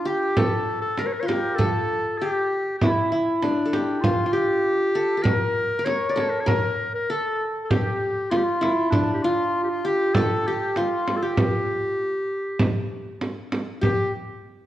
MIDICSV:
0, 0, Header, 1, 4, 480
1, 0, Start_track
1, 0, Tempo, 611621
1, 1245, Time_signature, 4, 2, 24, 8
1, 11508, End_track
2, 0, Start_track
2, 0, Title_t, "Clarinet"
2, 0, Program_c, 0, 71
2, 55, Note_on_c, 0, 67, 75
2, 294, Note_on_c, 0, 69, 78
2, 305, Note_off_c, 0, 67, 0
2, 635, Note_off_c, 0, 69, 0
2, 639, Note_on_c, 0, 69, 73
2, 776, Note_on_c, 0, 70, 66
2, 787, Note_off_c, 0, 69, 0
2, 834, Note_on_c, 0, 73, 60
2, 846, Note_off_c, 0, 70, 0
2, 885, Note_on_c, 0, 70, 65
2, 897, Note_off_c, 0, 73, 0
2, 942, Note_on_c, 0, 73, 57
2, 954, Note_off_c, 0, 70, 0
2, 993, Note_on_c, 0, 70, 80
2, 1005, Note_off_c, 0, 73, 0
2, 1218, Note_on_c, 0, 69, 80
2, 1230, Note_off_c, 0, 70, 0
2, 1711, Note_on_c, 0, 67, 82
2, 1722, Note_off_c, 0, 69, 0
2, 2178, Note_off_c, 0, 67, 0
2, 2183, Note_on_c, 0, 64, 71
2, 2441, Note_off_c, 0, 64, 0
2, 2668, Note_on_c, 0, 62, 70
2, 3144, Note_on_c, 0, 65, 77
2, 3156, Note_off_c, 0, 62, 0
2, 3397, Note_on_c, 0, 67, 91
2, 3409, Note_off_c, 0, 65, 0
2, 4103, Note_on_c, 0, 70, 91
2, 4115, Note_off_c, 0, 67, 0
2, 4589, Note_on_c, 0, 73, 77
2, 4601, Note_off_c, 0, 70, 0
2, 4791, Note_on_c, 0, 74, 67
2, 4803, Note_off_c, 0, 73, 0
2, 4868, Note_on_c, 0, 73, 73
2, 4880, Note_off_c, 0, 74, 0
2, 4940, Note_on_c, 0, 70, 74
2, 4952, Note_off_c, 0, 73, 0
2, 5024, Note_on_c, 0, 73, 74
2, 5036, Note_off_c, 0, 70, 0
2, 5083, Note_off_c, 0, 73, 0
2, 5088, Note_on_c, 0, 70, 83
2, 5420, Note_off_c, 0, 70, 0
2, 5452, Note_on_c, 0, 70, 78
2, 5577, Note_on_c, 0, 69, 86
2, 5588, Note_off_c, 0, 70, 0
2, 5838, Note_off_c, 0, 69, 0
2, 5998, Note_on_c, 0, 69, 56
2, 6049, Note_on_c, 0, 67, 78
2, 6061, Note_off_c, 0, 69, 0
2, 6521, Note_on_c, 0, 65, 72
2, 6532, Note_off_c, 0, 67, 0
2, 6569, Note_on_c, 0, 67, 63
2, 6581, Note_off_c, 0, 65, 0
2, 6626, Note_on_c, 0, 65, 78
2, 6637, Note_off_c, 0, 67, 0
2, 6988, Note_on_c, 0, 62, 82
2, 7000, Note_off_c, 0, 65, 0
2, 7165, Note_off_c, 0, 62, 0
2, 7170, Note_on_c, 0, 67, 58
2, 7244, Note_on_c, 0, 65, 94
2, 7256, Note_off_c, 0, 67, 0
2, 7557, Note_off_c, 0, 65, 0
2, 7562, Note_on_c, 0, 67, 47
2, 7612, Note_on_c, 0, 65, 76
2, 7624, Note_off_c, 0, 67, 0
2, 7728, Note_off_c, 0, 65, 0
2, 7744, Note_on_c, 0, 67, 82
2, 7962, Note_on_c, 0, 69, 83
2, 7974, Note_off_c, 0, 67, 0
2, 8219, Note_on_c, 0, 67, 80
2, 8231, Note_off_c, 0, 69, 0
2, 8459, Note_on_c, 0, 65, 80
2, 8471, Note_off_c, 0, 67, 0
2, 8765, Note_on_c, 0, 69, 57
2, 8777, Note_off_c, 0, 65, 0
2, 8817, Note_on_c, 0, 67, 83
2, 8829, Note_off_c, 0, 69, 0
2, 10371, Note_off_c, 0, 67, 0
2, 10852, Note_on_c, 0, 67, 89
2, 11071, Note_off_c, 0, 67, 0
2, 11508, End_track
3, 0, Start_track
3, 0, Title_t, "Qanun"
3, 0, Program_c, 1, 107
3, 0, Note_on_c, 1, 62, 82
3, 0, Note_on_c, 1, 65, 77
3, 42, Note_on_c, 1, 67, 88
3, 288, Note_on_c, 1, 69, 87
3, 510, Note_off_c, 1, 62, 0
3, 624, Note_off_c, 1, 65, 0
3, 773, Note_on_c, 1, 70, 80
3, 820, Note_off_c, 1, 69, 0
3, 961, Note_on_c, 1, 65, 57
3, 1003, Note_off_c, 1, 67, 0
3, 1006, Note_on_c, 1, 67, 76
3, 1243, Note_on_c, 1, 69, 94
3, 1290, Note_off_c, 1, 70, 0
3, 1735, Note_off_c, 1, 67, 0
3, 1738, Note_on_c, 1, 67, 88
3, 2019, Note_off_c, 1, 65, 0
3, 2161, Note_off_c, 1, 69, 0
3, 2216, Note_on_c, 1, 64, 81
3, 2443, Note_off_c, 1, 64, 0
3, 2447, Note_on_c, 1, 64, 72
3, 2686, Note_on_c, 1, 62, 80
3, 2723, Note_off_c, 1, 67, 0
3, 2869, Note_on_c, 1, 69, 61
3, 2930, Note_on_c, 1, 67, 82
3, 3172, Note_on_c, 1, 65, 88
3, 3220, Note_off_c, 1, 64, 0
3, 3341, Note_off_c, 1, 65, 0
3, 3344, Note_on_c, 1, 65, 62
3, 3395, Note_off_c, 1, 67, 0
3, 3398, Note_on_c, 1, 67, 82
3, 3787, Note_off_c, 1, 69, 0
3, 3857, Note_off_c, 1, 62, 0
3, 3884, Note_on_c, 1, 69, 86
3, 4054, Note_off_c, 1, 69, 0
3, 4057, Note_on_c, 1, 69, 59
3, 4108, Note_on_c, 1, 70, 89
3, 4156, Note_off_c, 1, 69, 0
3, 4384, Note_off_c, 1, 67, 0
3, 4401, Note_off_c, 1, 65, 0
3, 4540, Note_off_c, 1, 70, 0
3, 4543, Note_on_c, 1, 70, 73
3, 4596, Note_on_c, 1, 73, 90
3, 4778, Note_off_c, 1, 70, 0
3, 4782, Note_on_c, 1, 70, 63
3, 4832, Note_on_c, 1, 69, 87
3, 4879, Note_off_c, 1, 70, 0
3, 5071, Note_on_c, 1, 70, 96
3, 5119, Note_off_c, 1, 69, 0
3, 5399, Note_off_c, 1, 73, 0
3, 5571, Note_on_c, 1, 69, 88
3, 5618, Note_off_c, 1, 70, 0
3, 6049, Note_on_c, 1, 67, 82
3, 6489, Note_off_c, 1, 69, 0
3, 6525, Note_on_c, 1, 65, 86
3, 6758, Note_on_c, 1, 64, 79
3, 6805, Note_off_c, 1, 65, 0
3, 7008, Note_on_c, 1, 62, 84
3, 7034, Note_off_c, 1, 67, 0
3, 7254, Note_on_c, 1, 65, 93
3, 7301, Note_off_c, 1, 64, 0
3, 7728, Note_on_c, 1, 67, 87
3, 7979, Note_on_c, 1, 69, 88
3, 8179, Note_off_c, 1, 62, 0
3, 8218, Note_off_c, 1, 67, 0
3, 8221, Note_on_c, 1, 67, 80
3, 8312, Note_off_c, 1, 65, 0
3, 8452, Note_on_c, 1, 65, 82
3, 8805, Note_off_c, 1, 67, 0
3, 8808, Note_on_c, 1, 67, 69
3, 8897, Note_off_c, 1, 69, 0
3, 9509, Note_off_c, 1, 65, 0
3, 10335, Note_off_c, 1, 67, 0
3, 10841, Note_on_c, 1, 67, 73
3, 11066, Note_off_c, 1, 67, 0
3, 11508, End_track
4, 0, Start_track
4, 0, Title_t, "Frame drum"
4, 288, Note_on_c, 9, 64, 93
4, 367, Note_off_c, 9, 64, 0
4, 765, Note_on_c, 9, 64, 67
4, 843, Note_off_c, 9, 64, 0
4, 1010, Note_on_c, 9, 64, 70
4, 1089, Note_off_c, 9, 64, 0
4, 1248, Note_on_c, 9, 64, 76
4, 1326, Note_off_c, 9, 64, 0
4, 2208, Note_on_c, 9, 64, 88
4, 2287, Note_off_c, 9, 64, 0
4, 2688, Note_on_c, 9, 64, 65
4, 2766, Note_off_c, 9, 64, 0
4, 2929, Note_on_c, 9, 64, 63
4, 3008, Note_off_c, 9, 64, 0
4, 3169, Note_on_c, 9, 64, 81
4, 3248, Note_off_c, 9, 64, 0
4, 4121, Note_on_c, 9, 64, 95
4, 4200, Note_off_c, 9, 64, 0
4, 4607, Note_on_c, 9, 64, 62
4, 4685, Note_off_c, 9, 64, 0
4, 4845, Note_on_c, 9, 64, 70
4, 4924, Note_off_c, 9, 64, 0
4, 5082, Note_on_c, 9, 64, 84
4, 5161, Note_off_c, 9, 64, 0
4, 6047, Note_on_c, 9, 64, 94
4, 6126, Note_off_c, 9, 64, 0
4, 6531, Note_on_c, 9, 64, 66
4, 6610, Note_off_c, 9, 64, 0
4, 6770, Note_on_c, 9, 64, 67
4, 6848, Note_off_c, 9, 64, 0
4, 7002, Note_on_c, 9, 64, 79
4, 7081, Note_off_c, 9, 64, 0
4, 7963, Note_on_c, 9, 64, 104
4, 8041, Note_off_c, 9, 64, 0
4, 8444, Note_on_c, 9, 64, 65
4, 8523, Note_off_c, 9, 64, 0
4, 8692, Note_on_c, 9, 64, 68
4, 8770, Note_off_c, 9, 64, 0
4, 8926, Note_on_c, 9, 64, 98
4, 9004, Note_off_c, 9, 64, 0
4, 9883, Note_on_c, 9, 64, 101
4, 9961, Note_off_c, 9, 64, 0
4, 10368, Note_on_c, 9, 64, 66
4, 10447, Note_off_c, 9, 64, 0
4, 10610, Note_on_c, 9, 64, 77
4, 10688, Note_off_c, 9, 64, 0
4, 10853, Note_on_c, 9, 64, 73
4, 10931, Note_off_c, 9, 64, 0
4, 11508, End_track
0, 0, End_of_file